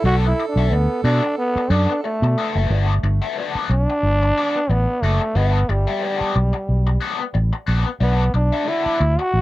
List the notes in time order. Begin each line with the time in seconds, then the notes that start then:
Already playing: A4
0.04 B1 B3 F#4 A4 D5
0.25 E4, muted overdriven electric guitar stroke
0.40 muted overdriven electric guitar stroke
0.49 D4
0.56 B1 B3 F#4 A4 E5
0.71 D2 B3, muted overdriven electric guitar stroke
1.04 B2 B3 D4 F#4 A4 E5
1.23 muted overdriven electric guitar stroke
1.38 B3
1.56 muted fingered electric bass stroke, muted overdriven electric guitar stroke
1.70 F#2 B3 D4 F#4 A4 D5
1.90 muted overdriven electric guitar stroke
2.04 A3, muted overdriven electric guitar stroke
2.22 B2, muted overdriven electric guitar stroke
2.38 B3 F#4 A4 E5
2.55 F#1 B3 F#4 A4 E5
2.70 G1 B3 F#4 A4 D5
3.03 G1, muted overdriven electric guitar stroke
3.22 B3 F#4 A4 E5
3.37 B3 F#4 A4 D5
3.55 muted fingered electric bass stroke
3.70 B1 D4, muted overdriven electric guitar stroke
3.90 muted overdriven electric guitar stroke
4.03 G1
4.22 muted overdriven electric guitar stroke
4.37 B3 F#4 A4 D5
4.56 muted overdriven electric guitar stroke
4.69 A1 B3, muted overdriven electric guitar stroke
5.02 F#1 A3 B3 F#4 A4 D5
5.21 muted overdriven electric guitar stroke
5.35 G1 B3 F#4 A4 E5
5.69 G1 G3, muted overdriven electric guitar stroke
5.87 B3 F#4 A4 E5
6.02 B3 F#4 A4 D5
6.21 muted fingered electric bass stroke
6.35 B1, muted overdriven electric guitar stroke
6.53 muted overdriven electric guitar stroke
6.69 B1
6.87 muted overdriven electric guitar stroke
7.01 B3 F#4 A4 D5
7.19 muted overdriven electric guitar stroke
7.34 A1, muted overdriven electric guitar stroke
7.53 muted overdriven electric guitar stroke
7.67 A#1 B3 F#4 A4 D5
7.85 muted overdriven electric guitar stroke
8.00 B1 B3 D4 F#4 A4 D5
8.34 B1 D4, muted overdriven electric guitar stroke
8.52 D4 F#4 A4 E5
8.66 D4 E4 F#4 A4 D5
8.86 muted fingered electric bass stroke
9.00 D2, muted overdriven electric guitar stroke
9.19 F#4, muted overdriven electric guitar stroke
9.34 A1